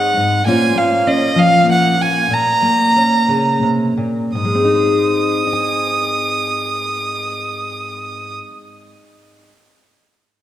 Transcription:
0.00 0.15 G#2 medium
0.00 0.43 G#3 medium
0.00 0.47 C4 medium
0.00 0.46 D#4 soft
0.00 0.41 C5 medium
0.00 0.46 F#5 medium
0.16 0.45 G#2 medium
0.46 2.27 A#2 medium
0.46 0.75 A#3 medium
0.46 1.07 C#4 soft
0.46 1.97 F4 soft
0.46 2.33 C5 medium
0.46 0.79 G#5 medium
0.75 1.65 A#3 soft
0.75 1.09 F5 medium
1.07 2.27 C#4 soft
1.07 1.40 D#5 medium
1.36 2.26 F3 medium
1.36 1.69 F5 medium
1.67 2.26 A#3 soft
1.72 2.03 F#5 medium
1.98 2.27 F4 soft
1.98 2.34 G#5 medium
2.30 3.62 A#2 medium
2.30 3.65 A#5 medium
2.62 4.31 A#3 medium
2.96 4.32 C#4 soft
3.28 3.64 C#3 soft
3.63 3.97 C3 soft
3.97 4.35 A#2 soft
4.35 8.38 G#2 soft
4.35 8.34 D#6 medium
4.45 8.48 G#3 soft
4.55 8.58 C4 soft
4.64 5.47 D#4 soft
4.75 5.52 C5 soft
5.47 9.50 D#5 soft
5.53 9.56 G#5 soft

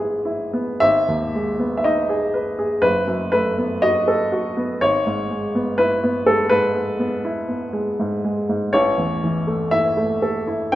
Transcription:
0.00 0.78 G#1 soft
0.00 0.85 G#2 soft
0.00 0.84 G#3 soft
0.00 0.53 B3 soft
0.00 0.14 E4 soft
0.00 0.43 G#4 soft
0.00 0.82 B4 medium
0.25 0.71 E4 soft
0.53 0.82 B3 soft
0.80 2.80 G#1 soft
0.80 1.76 E5 medium
1.08 1.50 D#2 soft
1.35 1.75 G#3 soft
1.59 2.00 B3 soft
1.77 1.85 E5 medium
1.84 2.25 D#4 soft
1.84 2.83 D#5 medium
2.09 2.49 G#4 soft
2.34 2.74 B4 soft
2.59 2.84 G#4 soft
2.82 4.76 F#1 soft
2.82 3.30 B4 medium
3.08 3.47 F#2 soft
3.32 3.72 A3 soft
3.32 3.82 B4 medium
3.58 3.97 B3 soft
3.82 4.22 F#4 soft
3.82 4.80 D#5 medium
4.08 4.47 A4 soft
4.32 4.71 F#4 soft
4.57 4.81 B3 soft
4.81 8.68 G#1 soft
4.81 5.78 C#5 medium
5.07 5.45 G#2 soft
5.30 5.69 G#3 soft
5.55 5.93 B3 soft
5.78 6.17 E4 soft
5.78 6.26 B4 medium
6.04 6.41 B3 soft
6.26 6.65 G#3 soft
6.26 6.50 A4 medium
6.49 6.89 G#2 soft
6.49 8.72 B4 medium
6.75 7.13 G#3 soft
6.99 7.38 B3 soft
7.25 7.63 E4 soft
7.49 7.88 B3 soft
7.73 8.13 G#3 soft
7.99 8.38 G#2 soft
8.24 8.63 G#3 soft
8.49 8.73 G#2 soft
8.73 10.69 A1 medium
8.73 9.71 C#5 medium
8.98 9.37 E2 soft
9.24 9.62 E3 soft
9.47 9.86 A3 soft
9.71 10.12 E4 soft
9.71 10.73 E5 medium
9.97 10.37 A3 soft
10.22 10.63 A4 soft
10.47 10.73 E4 soft
10.72 10.75 G5 medium

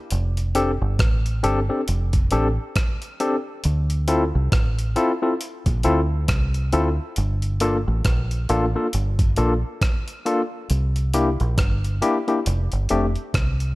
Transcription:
0.10 0.78 F1 loud
0.10 closed hi-hat medium
0.37 closed hi-hat medium
0.55 0.70 C4 medium
0.55 0.70 D4 medium
0.55 0.71 G4 medium
0.55 0.71 A4 loud
0.55 closed hi-hat medium
0.82 0.99 G1 medium
0.99 1.42 A1 medium
0.99 kick loud
0.99 cross-stick loud
0.99 closed hi-hat medium
1.26 closed hi-hat medium
1.43 1.68 G1 medium
1.43 1.59 C4 medium
1.43 1.59 D4 medium
1.43 1.59 G4 medium
1.43 1.59 A4 loud
1.43 closed hi-hat medium
1.69 1.80 C4 medium
1.69 1.80 D4 medium
1.69 1.80 G4 medium
1.69 1.80 A4 medium
1.88 2.30 F1 loud
1.88 closed hi-hat medium
2.13 kick medium
2.13 closed hi-hat medium
2.31 2.57 A1 medium
2.31 2.47 C4 medium
2.31 2.47 D4 medium
2.31 2.47 G4 medium
2.31 2.47 A4 loud
2.31 closed hi-hat medium
2.76 kick loud
2.76 cross-stick loud
2.76 closed hi-hat medium
3.02 closed hi-hat medium
3.20 3.35 C4 medium
3.20 3.35 D4 medium
3.20 3.35 G4 medium
3.20 3.35 A4 loud
3.20 closed hi-hat medium
3.64 4.31 D2 loud
3.64 closed hi-hat medium
3.90 closed hi-hat medium
4.08 4.23 C4 loud
4.08 4.23 E4 medium
4.08 4.23 F4 medium
4.08 4.24 A4 loud
4.08 closed hi-hat medium
4.35 4.52 C2 medium
4.52 4.95 A1 medium
4.52 kick loud
4.52 cross-stick loud
4.52 closed hi-hat medium
4.79 closed hi-hat medium
4.96 5.11 C4 loud
4.96 5.11 E4 medium
4.96 5.12 F4 loud
4.96 5.12 A4 loud
4.96 closed hi-hat medium
5.22 5.33 C4 medium
5.22 5.33 E4 medium
5.22 5.33 F4 medium
5.22 5.33 A4 medium
5.41 closed hi-hat medium
5.66 5.84 A#1 medium
5.66 kick medium
5.66 closed hi-hat medium
5.83 6.27 D2 medium
5.83 6.00 C4 loud
5.83 6.00 E4 medium
5.83 6.00 F4 medium
5.83 6.00 A4 loud
5.83 closed hi-hat medium
6.28 6.71 C2 loud
6.28 kick loud
6.28 cross-stick loud
6.28 closed hi-hat medium
6.54 closed hi-hat soft
6.73 6.98 D2 medium
6.73 6.88 C4 medium
6.73 6.88 E4 medium
6.73 6.88 F4 medium
6.73 6.88 A4 loud
6.73 closed hi-hat medium
7.16 7.84 G1 loud
7.16 closed hi-hat medium
7.42 closed hi-hat soft
7.60 7.76 A#3 loud
7.60 7.76 D4 medium
7.60 7.76 F4 medium
7.60 7.76 A4 loud
7.60 closed hi-hat medium
7.88 8.05 A1 medium
8.05 8.47 A#1 medium
8.05 kick loud
8.05 cross-stick loud
8.05 closed hi-hat medium
8.31 closed hi-hat medium
8.49 8.74 A1 loud
8.49 8.64 A#3 loud
8.49 8.65 D4 medium
8.49 8.65 F4 medium
8.49 8.65 A4 loud
8.49 closed hi-hat medium
8.75 8.86 A#3 medium
8.75 8.86 D4 medium
8.75 8.86 F4 medium
8.75 8.86 A4 medium
8.93 9.36 G1 loud
8.93 closed hi-hat loud
9.19 kick medium
9.19 closed hi-hat medium
9.36 9.62 A#1 medium
9.36 9.53 A#3 loud
9.36 9.53 D4 medium
9.36 9.53 F4 medium
9.36 9.53 A4 loud
9.36 closed hi-hat medium
9.81 kick loud
9.81 cross-stick loud
9.81 closed hi-hat medium
10.08 closed hi-hat medium
10.26 10.41 A#3 medium
10.26 10.41 D4 medium
10.26 10.41 F4 medium
10.26 10.41 A4 loud
10.26 closed hi-hat medium
10.70 11.37 C2 loud
10.70 closed hi-hat medium
10.96 closed hi-hat medium
11.14 11.29 A#3 medium
11.14 11.29 D4 medium
11.14 11.29 E4 medium
11.14 11.29 G4 loud
11.14 closed hi-hat medium
11.40 11.58 A#1 medium
11.40 closed hi-hat soft
11.58 12.00 G1 medium
11.58 kick loud
11.58 cross-stick loud
11.58 closed hi-hat medium
11.84 closed hi-hat medium
12.02 12.17 A#3 loud
12.02 12.17 D4 medium
12.02 12.17 E4 medium
12.02 12.17 G4 loud
12.02 closed hi-hat medium
12.28 12.38 A#3 medium
12.28 12.39 D4 medium
12.28 12.39 E4 medium
12.28 12.39 G4 medium
12.28 closed hi-hat soft
12.46 12.71 F1 loud
12.46 closed hi-hat loud
12.72 12.90 G1 medium
12.72 closed hi-hat medium
12.89 13.15 F1 medium
12.89 13.05 A3 medium
12.89 13.06 C4 medium
12.89 13.06 D4 medium
12.89 13.06 G4 loud
12.89 closed hi-hat medium
13.16 closed hi-hat soft
13.34 13.75 C2 loud
13.34 kick loud
13.34 cross-stick loud
13.34 closed hi-hat medium
13.60 closed hi-hat medium

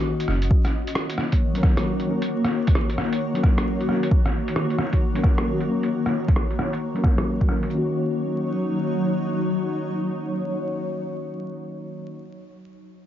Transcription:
0.00 0.25 D#3 medium
0.00 0.26 A#3 medium
0.00 0.26 C#4 medium
0.00 0.47 C#4 medium
0.00 0.27 F#4 medium
0.00 0.46 F#4 medium
0.00 0.47 D#5 medium
0.20 closed hi-hat soft
0.28 0.49 F#1 medium
0.28 cross-stick soft
0.42 closed hi-hat medium
0.51 7.68 D#3 medium
0.51 7.68 A#3 medium
0.51 7.68 F#4 medium
0.51 7.68 C#5 medium
0.51 kick loud
0.65 cross-stick soft
0.65 closed hi-hat soft
0.87 closed hi-hat medium
0.95 cross-stick medium
1.10 closed hi-hat soft
1.18 cross-stick medium
1.32 kick medium
1.32 closed hi-hat soft
1.53 1.74 F#3 medium
1.53 1.74 A#3 medium
1.53 1.75 C#4 medium
1.53 closed hi-hat soft
1.58 1.76 A#4 medium
1.63 kick loud
1.63 cross-stick soft
1.76 2.06 F#3 medium
1.76 2.06 A#3 medium
1.76 2.07 C#4 medium
1.76 2.07 A#4 medium
1.76 cross-stick loud
1.76 closed hi-hat medium
2.00 closed hi-hat soft
2.07 2.21 F#3 medium
2.07 2.22 A#3 medium
2.07 2.23 C#4 medium
2.07 2.23 A#4 medium
2.22 closed hi-hat soft
2.45 cross-stick soft
2.45 closed hi-hat soft
2.67 kick medium
2.67 closed hi-hat soft
2.75 cross-stick medium
2.90 closed hi-hat soft
2.98 cross-stick medium
3.13 closed hi-hat soft
3.34 3.54 F#3 medium
3.34 3.55 A#3 medium
3.34 3.55 C#4 medium
3.34 3.56 A#4 medium
3.34 closed hi-hat soft
3.43 kick medium
3.43 cross-stick soft
3.56 3.86 F#3 medium
3.56 3.86 A#3 medium
3.56 3.87 C#4 medium
3.56 cross-stick medium
3.56 closed hi-hat soft
3.60 3.88 A#4 medium
3.81 closed hi-hat soft
3.87 4.02 F#3 medium
3.87 4.02 A#3 medium
3.87 4.03 C#4 medium
3.87 cross-stick soft
3.91 4.04 A#4 medium
4.03 closed hi-hat soft
4.11 kick loud
4.26 cross-stick soft
4.26 closed hi-hat soft
4.48 closed hi-hat soft
4.56 cross-stick medium
4.70 closed hi-hat soft
4.78 cross-stick medium
4.93 kick medium
4.93 closed hi-hat soft
5.14 5.34 F#3 medium
5.14 5.35 A#3 medium
5.14 5.36 C#4 medium
5.14 closed hi-hat soft
5.18 5.36 A#4 medium
5.23 kick medium
5.23 cross-stick soft
5.37 5.66 F#3 medium
5.37 5.67 A#3 medium
5.37 5.67 C#4 medium
5.37 cross-stick medium
5.37 closed hi-hat soft
5.41 5.68 A#4 medium
5.60 closed hi-hat soft
5.67 5.82 F#3 medium
5.67 5.83 A#3 medium
5.67 5.83 C#4 medium
5.71 5.84 A#4 medium
5.83 closed hi-hat soft
6.06 cross-stick medium
6.06 closed hi-hat soft
6.28 kick medium
6.28 closed hi-hat medium
6.36 cross-stick medium
6.51 closed hi-hat soft
6.59 cross-stick medium
6.73 closed hi-hat medium
6.94 7.15 F#3 medium
6.94 7.15 A#3 medium
6.94 7.16 C#4 medium
6.94 closed hi-hat soft
6.98 7.17 A#4 medium
7.04 kick medium
7.04 cross-stick soft
7.17 7.46 F#3 medium
7.17 7.47 A#3 medium
7.17 7.48 C#4 medium
7.17 cross-stick medium
7.17 closed hi-hat medium
7.21 7.49 A#4 medium
7.41 kick medium
7.41 closed hi-hat soft
7.48 7.62 F#3 medium
7.48 7.63 A#3 medium
7.48 7.64 C#4 medium
7.48 7.64 A#4 medium
7.48 cross-stick soft
7.63 12.14 D#3 medium
7.63 closed hi-hat soft
7.70 12.08 F#3 medium
7.70 12.17 A#3 medium
7.70 12.08 D#4 medium
7.70 12.09 C#5 medium
7.74 12.22 C#4 medium
7.74 12.26 F#4 medium

